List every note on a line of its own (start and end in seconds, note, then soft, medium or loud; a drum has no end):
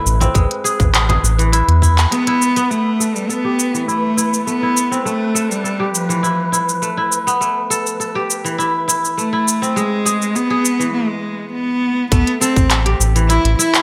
0.00 0.40 E3 medium
0.00 0.40 A3 medium
0.00 1.48 E4 medium
0.00 0.15 G4 loud
0.00 2.70 B4 medium
0.06 0.29 A1 medium
0.06 shaker medium
0.20 2.00 C4 loud
0.20 closed hi-hat soft
0.20 frame drum medium
0.20 shaker soft
0.34 0.47 A1 medium
0.34 2.10 G#3 loud
0.34 kick loud
0.34 closed hi-hat medium
0.34 shaker soft
0.51 closed hi-hat soft
0.64 0.93 G#4 loud
0.64 shaker medium
0.80 1.18 A1 medium
0.80 kick loud
0.80 closed hi-hat soft
0.80 frame drum medium
0.80 shaker soft
0.94 1.09 G#4 medium
0.94 clap medium
0.94 closed hi-hat medium
0.94 shaker soft
1.09 2.45 G#4 loud
1.09 closed hi-hat soft
1.09 frame drum medium
1.23 1.62 A1 medium
1.23 shaker medium
1.39 2.76 E3 medium
1.39 closed hi-hat soft
1.39 shaker soft
1.52 1.81 E4 medium
1.52 closed hi-hat medium
1.52 shaker soft
1.68 2.06 E2 medium
1.68 closed hi-hat soft
1.82 2.27 E4 loud
1.82 kick medium
1.82 shaker medium
1.98 clap medium
1.98 closed hi-hat soft
1.98 shaker soft
2.11 2.76 G#3 medium
2.11 2.71 B3 loud
2.11 closed hi-hat medium
2.11 shaker soft
2.27 3.84 E4 loud
2.27 closed hi-hat soft
2.42 shaker medium
2.56 4.43 B3 loud
2.56 closed hi-hat soft
2.56 shaker soft
2.70 3.17 A3 loud
2.70 4.46 A3 medium
2.70 10.94 B4 medium
2.70 shaker soft
3.00 3.29 A4 medium
3.00 shaker medium
3.16 3.31 G3 medium
3.16 shaker soft
3.29 3.88 B3 medium
3.29 4.61 A4 medium
3.29 shaker soft
3.44 4.86 G4 medium
3.59 shaker medium
3.74 5.11 E3 medium
3.74 shaker soft
3.88 4.43 A3 medium
3.88 4.17 E4 medium
3.88 shaker soft
4.17 4.62 E4 medium
4.17 shaker medium
4.34 shaker soft
4.47 5.05 A3 medium
4.47 5.02 B3 medium
4.47 shaker soft
4.63 6.19 E4 medium
4.77 shaker medium
4.91 6.71 C4 medium
4.91 shaker soft
5.05 6.82 A3 medium
5.05 5.52 A3 medium
5.05 shaker soft
5.35 5.64 A4 medium
5.35 shaker medium
5.51 5.93 G3 medium
5.51 shaker soft
5.64 6.96 A4 medium
5.64 shaker soft
5.80 7.21 G4 medium
5.94 6.78 F3 medium
5.94 shaker medium
6.09 7.46 E3 medium
6.09 shaker soft
6.23 6.52 E4 medium
6.23 shaker soft
6.52 6.97 E4 medium
6.52 shaker medium
6.69 shaker soft
6.82 7.40 A3 medium
6.82 shaker soft
6.97 8.54 E4 medium
7.12 shaker medium
7.27 9.13 B3 medium
7.27 shaker soft
7.41 9.17 A3 medium
7.41 shaker soft
7.70 7.99 A4 medium
7.70 shaker medium
7.87 shaker soft
8.00 9.32 A4 medium
8.00 shaker soft
8.15 9.57 G4 medium
8.30 shaker medium
8.44 9.81 E3 medium
8.44 shaker soft
8.58 8.87 E4 medium
8.58 shaker soft
8.88 9.32 E4 medium
8.88 shaker medium
9.05 shaker soft
9.18 9.82 A3 medium
9.18 9.78 A3 medium
9.18 shaker soft
9.33 10.89 E4 medium
9.48 shaker medium
9.62 11.42 C4 medium
9.62 shaker soft
9.76 12.10 G#3 loud
9.76 10.37 G#3 medium
9.76 shaker soft
10.05 10.35 G#4 loud
10.05 shaker medium
10.22 shaker soft
10.35 10.93 B3 loud
10.35 10.50 G#4 medium
10.35 shaker soft
10.50 11.87 G#4 medium
10.65 shaker medium
10.79 12.17 E3 medium
10.79 shaker soft
10.94 11.49 G#3 medium
11.52 12.07 B3 medium
12.11 12.24 A1 loud
12.11 13.82 A3 loud
12.11 12.39 B3 loud
12.11 kick loud
12.11 closed hi-hat medium
12.11 shaker soft
12.27 closed hi-hat soft
12.40 12.95 C4 loud
12.40 12.70 A4 loud
12.40 shaker medium
12.56 12.95 A1 medium
12.56 kick loud
12.56 closed hi-hat soft
12.56 shaker soft
12.70 13.82 A4 medium
12.70 clap medium
12.70 closed hi-hat medium
12.70 shaker soft
12.86 13.82 G4 loud
12.86 closed hi-hat soft
13.00 13.39 A1 medium
13.00 shaker medium
13.16 13.82 E3 medium
13.16 closed hi-hat soft
13.16 shaker soft
13.29 13.56 E4 medium
13.29 13.58 E4 loud
13.29 closed hi-hat medium
13.29 shaker soft
13.44 13.55 A1 loud
13.44 closed hi-hat soft
13.58 13.82 E4 medium
13.58 13.82 E4 loud
13.58 shaker medium
13.74 clap medium
13.74 closed hi-hat soft
13.74 shaker soft